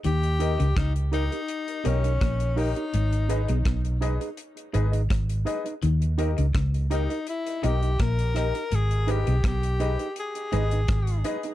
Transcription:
<<
  \new Staff \with { instrumentName = "Upright piano" } { \time 4/4 \key gis \minor \tempo 4 = 83 r8 <dis' g' ais' dis''>16 r8. <dis' g' ais' dis''>16 r8 <ais' dis''>16 <dis' g' ais' dis''>16 r8. <dis' g' ais' dis''>16 r16 | r8 <dis' gis' b' dis''>16 r8. <dis' gis' b' dis''>16 r8. <dis' gis' b' dis''>16 r8. <dis' gis' b' dis''>16 r16 | r8 <dis' g' ais' dis''>16 r8. <dis' g' ais' dis''>16 r8 <ais' dis''>16 <dis' g' ais' dis''>16 r8. <dis' g' ais' dis''>16 r16 | r8 <dis' gis' b' dis''>16 r8. <dis' gis' b' dis''>16 r8. <dis' gis' b' dis''>16 r8. <dis' gis' b' dis''>16 r16 | }
  \new Staff \with { instrumentName = "Clean electric guitar" } { \time 4/4 \key gis \minor r8 <dis' g' ais' dis''>16 <dis' g' ais' dis''>16 r8 <dis' g' ais' dis''>16 <dis' g' ais' dis''>16 r8 <dis' g' ais' dis''>16 <dis' g' ais' dis''>16 r8 <dis' g' ais' dis''>16 <dis' g' ais' dis''>16 | r8 <dis' gis' b' dis''>16 <dis' gis' b' dis''>16 r8 <dis' gis' b' dis''>16 <dis' gis' b' dis''>16 r8 <dis' gis' b' dis''>16 <dis' gis' b' dis''>16 r8 <dis' gis' b' dis''>16 <dis' gis' b' dis''>16 | r8 <dis' g' ais' dis''>16 <dis' g' ais' dis''>16 r8 <dis' g' ais' dis''>16 <dis' g' ais' dis''>16 r8 <dis' g' ais' dis''>16 <dis' g' ais' dis''>16 r8 <dis' g' ais' dis''>16 <dis' g' ais' dis''>16 | r8 <dis' gis' b' dis''>16 <dis' gis' b' dis''>16 r8 <dis' gis' b' dis''>16 <dis' gis' b' dis''>16 r8 <dis' gis' b' dis''>16 <dis' gis' b' dis''>16 r8 <dis' gis' b' dis''>16 <dis' gis' b' dis''>16 | }
  \new Staff \with { instrumentName = "Tenor saxophone" } { \time 4/4 \key gis \minor g'4 dis'8 dis'4 cis'4 dis'8~ | dis'4. r2 r8 | r4. dis'8 e'8 g'8 ais'4 | gis'8 g'8 g'4 gis'4. r8 | }
  \new Staff \with { instrumentName = "Clean electric guitar" } { \clef bass \time 4/4 \key gis \minor dis8 r16 cis16 cis8 r4 b,8 ais,8 r8 | gis,8 r16 b,16 b,8 r4 gis,8 gis,8 r8 | dis8 r16 cis16 cis8 r4 b,8 ais,8 r8 | gis,8 r16 b,16 b,8 r4 gis,8 gis,8 r8 | }
  \new Staff \with { instrumentName = "Fingered electric bass" } { \clef bass \time 4/4 \key gis \minor dis,8. cis,16 cis,8. r8. b,,8 ais,,8. r16 | gis,,8. b,,16 b,,8. r8. gis,,8 gis,,8 r8 | dis,8. cis,16 cis,8. r8. b,,8 ais,,8. r16 | gis,,8. b,,16 b,,8. r8. gis,,8 gis,,8 r8 | }
  \new DrumStaff \with { instrumentName = "Drums" } \drummode { \time 4/4 hh16 hh16 hh16 hh16 <hh bd ss>16 hh16 hh16 hh16 hh16 hh16 hh16 hh16 <hh bd ss>16 hh16 hho16 hh16 | hh16 hh16 hh16 hh16 <hh bd ss>16 hh16 hh16 hh16 hh16 hh16 hh16 hh16 <hh bd ss>16 hh16 hh16 hh16 | hh16 hh16 hh16 hh16 <hh bd ss>16 hh16 hh16 hh16 hh16 hh16 hh16 hh16 <hh bd ss>16 hh16 <hh ss>16 hh16 | hh16 hh16 hh16 hh16 <hh bd ss>16 hh16 hh16 hh16 hh16 hh16 hh16 hh16 <hh bd ss>16 hh16 hh16 hh16 | }
>>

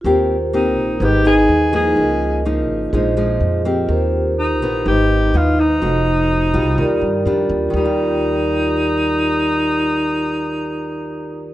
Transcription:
<<
  \new Staff \with { instrumentName = "Vibraphone" } { \time 4/4 \key ees \major \tempo 4 = 125 <f' g' bes' c''>2 <ees' aes' ces'' ees''>2 | <f' aes' bes' ees''>2 <f' aes' c'' ees''>2 | <f' g' bes' c''>2 <ees' ces'' ees''>2 | <ges' a' c'' ees''>2 <f' g' bes' d''>2 |
<f' g' bes' d''>1~ | <f' g' bes' d''>1 | }
  \new Staff \with { instrumentName = "Alto saxophone" } { \time 4/4 \key ees \major r4 ees'4 g'8 aes'4 aes'8~ | aes'4 r2. | r4 ees'4 g'4 f'8 ees'8~ | ees'2.~ ees'8 r8 |
ees'1~ | ees'1 | }
  \new Staff \with { instrumentName = "Nylon-string guitar" } { \time 4/4 \key ees \major << { <bes c' g'>8 r8 <bes c' g'>4 <ees ces' ees'>8 <ees ces' ees'>4 <f bes ees'>8~ | <f bes ees'>4 <f bes ees'>4 <f aes ees'>8 <f aes ees'>4 <bes c' g'>8~ | <bes c' g'>4 r8 <ees ces' ees'>4. <ees ces' ees'>8 r8 | <a ees' ges'>4 r8 <g f'>4. <g d' f'>4 |
<ees g f'>1~ | <ees g f'>1 | } \\ { ees2 aes,2 | des2 bes,2 | ees2 aes,2 | f2 ees2 |
r1 | r1 | } >> }
  \new Staff \with { instrumentName = "Upright bass" } { \clef bass \time 4/4 \key ees \major ees,4. bes,,8 aes,,4 ees,4 | des,4. aes,,8 bes,,4 f,4 | ees,4. bes,,8 aes,,4 ees,4 | f,,4. c,8 ees,8 g,8 f,8 ees,8 |
ees,1~ | ees,1 | }
>>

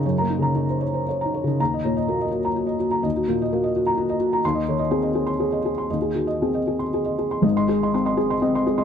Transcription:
<<
  \new Staff \with { instrumentName = "Felt piano" } { \time 3/4 \key ees \dorian \tempo 4 = 123 << { r2. | bes''8 r2 r8 | r2. | c'''8 r2 r8 |
r2. | r16 c'''16 r2 r8 | } \\ { <ees' des''>16 bes''16 ees'16 bes''16 des''16 c''16 des''16 c''16 des''16 bes''16 des''16 ees'16 | r16 ees''16 des''16 ees''16 ges'16 ees''16 ges'16 bes''16 ges'16 ees''16 ges'16 bes''16 | ees''16 ges'16 f'16 ees''16 ges'16 ees''16 ges'16 bes''16 ges'16 ees''16 ges'16 bes''16 | r16 ees''16 des''16 ees''16 aes'16 ees''16 aes'16 c'''16 aes'16 ees''16 aes'16 c'''16 |
ees''16 aes'16 ges'16 ees''16 aes'16 ees''16 aes'16 c'''16 aes'16 ees''16 aes'16 c'''16 | ees''16 ees''16 aes'16 <ees'' c'''>16 c'''16 <ees'' c'''>16 aes'16 <ees'' c'''>16 ees''16 <ees'' c'''>16 aes'16 <ees'' c'''>16 | } >> }
  \new Staff \with { instrumentName = "Felt piano" } { \clef bass \time 3/4 \key ees \dorian \tuplet 3/2 { <ges, des>8 bes8 des8 } ees'8 r8 \tuplet 3/2 { r8 ees'8 des8 } | ees,8 bes,8 bes4 r4 | ees,8 bes,8 bes4 r4 | ees,8 ees8 c'4 r4 |
ees,8 ees8 c'4 r4 | <aes,, aes,>4 c'4 c'4 | }
>>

